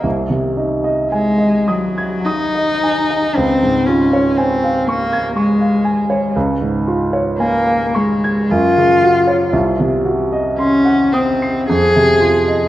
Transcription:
<<
  \new Staff \with { instrumentName = "Grand piano" } { \time 3/4 \key des \major \tempo 4 = 57 c,16 c16 ees'16 ees''16 aes''16 ees''16 ees'''16 aes'''16 ees'''16 ees''16 aes''16 ees''16 | des,16 aes,16 f'16 des''16 aes''16 f''16 des'''16 aes'''16 des'''16 f''16 aes''16 des''16 | des,16 aes,16 f'16 des''16 aes''16 f''16 des'''16 aes'''16 ges,16 des16 ges'16 des''16 | c,16 c16 ges'16 ees''16 c'''16 ges''16 ees'''16 c''''16 f,16 c16 f'16 ees''16 | }
  \new Staff \with { instrumentName = "Cello" } { \time 3/4 \key des \major r4 aes8 ges8 ees'4 | c'8 des'8 c'8 bes8 aes4 | r4 bes8 aes8 f'4 | r4 des'8 c'8 aes'4 | }
>>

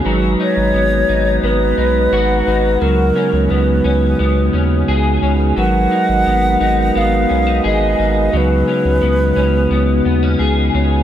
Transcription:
<<
  \new Staff \with { instrumentName = "Alto flute" } { \time 4/4 \key gis \minor \tempo 4 = 87 r8 cis''4. b'2 | ais'4 b'2 r4 | fis''2 eis''4 dis''4 | b'2. r4 | }
  \new Staff \with { instrumentName = "Tonewheel organ" } { \time 4/4 \key gis \minor << { <gis fis' b' ais''>1 | <cis b>1 | <ais' b'>1 | <cis b>1 | } \\ { dis'1~ | dis'1~ | dis'1~ | dis'1 | } >> }
  \new Staff \with { instrumentName = "Clean electric guitar" } { \time 4/4 \key gis \minor fis8 dis'8 b8 dis'8 b8 dis'8 fis'8 dis'8 | fis8 cis'8 b8 cis'8 b8 cis'8 gis'8 cis'8 | fis8 dis'8 b8 dis'8 b8 cis'16 dis'16 gis'8 dis'8 | fis8 cis'8 b8 cis'8 b8 b16 cis'16 gis'8 cis'8 | }
  \new Staff \with { instrumentName = "Sub bass" } { \clef bass \time 4/4 \key gis \minor gis,,8 r16 gis,,16 gis,,8 gis,,8 gis,,8 b,,8 gis,,8 gis,,8 | cis,8 r16 cis,16 cis,8 cis,8 cis,8 dis,8 cis,8 cis,8 | gis,,8 r16 gis,,16 gis,,8 gis,,8 gis,,8 b,,8 gis,,8 gis,,8 | cis,8 r16 cis,16 cis,8 cis,8 cis,8 dis,8 cis,8 cis,8 | }
>>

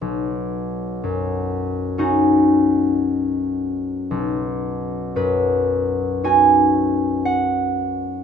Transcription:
\new Staff \with { instrumentName = "Harp" } { \time 4/4 \key b \major \tempo 4 = 59 << { r1 | r4 b'4 gis''4 fis''4 | } \\ { b,,4 fis,4 <cis' dis' fis'>2 | b,,4 fis,4 <cis' dis' fis'>2 | } >> }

